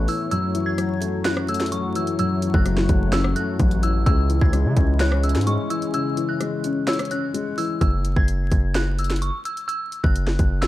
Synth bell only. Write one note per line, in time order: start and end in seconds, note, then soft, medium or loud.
0.08 0.27 E6 medium
0.31 0.64 E6 loud
0.66 1.21 G#6 medium
1.25 1.44 F#6 medium
1.49 1.67 E6 medium
1.72 1.90 C#6 medium
1.96 2.14 E6 medium
2.19 2.52 E6 loud
2.54 3.09 F#6 medium
3.13 3.31 E6 medium
3.36 3.80 F#6 medium
3.83 4.01 E6 medium
4.06 4.39 E6 loud
4.41 4.97 G#6 medium
5.01 5.19 F#6 loud
5.24 5.42 E6 medium
5.47 5.65 C#6 medium
5.70 5.89 E6 medium
5.94 6.27 E6 loud
6.29 6.84 F#6 medium
6.88 7.06 E6 medium
7.11 7.55 F#6 medium
7.58 7.76 E6 medium
7.81 8.14 E6 medium
8.16 8.72 G#6 medium
8.75 8.93 F#6 medium
8.99 9.17 E6 medium
9.22 9.40 C#6 medium
9.45 9.64 E6 medium
9.68 10.01 E6 loud
10.04 10.59 F#6 medium
10.61 10.67 E6 medium